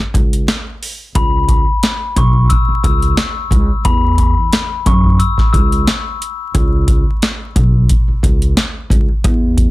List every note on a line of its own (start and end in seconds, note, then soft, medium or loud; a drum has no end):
0.14 0.45 C#2 loud
0.14 kick loud
0.14 closed hi-hat medium
0.33 closed hi-hat medium
0.48 snare loud
0.48 closed hi-hat medium
0.83 open hi-hat medium
1.15 1.63 C#2 loud
1.15 1.79 B5 medium
1.15 kick loud
1.15 closed hi-hat medium
1.48 kick loud
1.48 closed hi-hat medium
1.83 snare loud
1.83 closed hi-hat medium
2.16 2.47 B1 medium
2.16 2.34 C#6 medium
2.16 kick medium
2.16 closed hi-hat medium
2.49 2.80 E6 medium
2.49 kick medium
2.49 closed hi-hat medium
2.68 muted upright bass stroke soft
2.84 3.15 C#2 medium
2.84 3.15 E6 medium
2.84 kick loud
2.84 closed hi-hat medium
3.02 closed hi-hat medium
3.17 snare loud
3.17 closed hi-hat medium
3.51 3.68 C#2 medium
3.51 kick medium
3.51 closed hi-hat medium
3.85 4.33 E2 loud
3.85 4.48 B5 medium
3.85 kick loud
3.85 closed hi-hat medium
4.18 kick loud
4.18 closed hi-hat medium
4.53 snare loud
4.53 closed hi-hat medium
4.86 5.17 F#2 loud
4.86 5.03 C#6 medium
4.86 kick medium
4.86 closed hi-hat medium
5.04 kick medium
5.19 5.50 E6 medium
5.19 closed hi-hat medium
5.38 muted upright bass stroke soft
5.38 kick medium
5.38 snare soft
5.53 5.84 C#2 medium
5.53 5.83 E6 medium
5.53 kick loud
5.53 closed hi-hat medium
5.72 closed hi-hat medium
5.87 snare loud
5.87 closed hi-hat medium
6.22 closed hi-hat medium
6.55 7.03 C#2 loud
6.55 kick loud
6.55 closed hi-hat medium
6.88 kick loud
6.88 closed hi-hat medium
7.22 snare loud
7.22 closed hi-hat medium
7.56 7.87 B1 medium
7.56 kick medium
7.56 closed hi-hat medium
7.89 kick medium
7.89 closed hi-hat medium
8.08 muted upright bass stroke soft
8.23 8.54 C#2 medium
8.23 kick loud
8.23 closed hi-hat medium
8.42 closed hi-hat medium
8.57 snare loud
8.57 closed hi-hat medium
8.90 9.07 C#2 medium
8.90 kick medium
8.90 closed hi-hat medium
9.24 9.71 E2 loud
9.24 kick loud
9.24 closed hi-hat medium
9.57 kick loud
9.57 closed hi-hat medium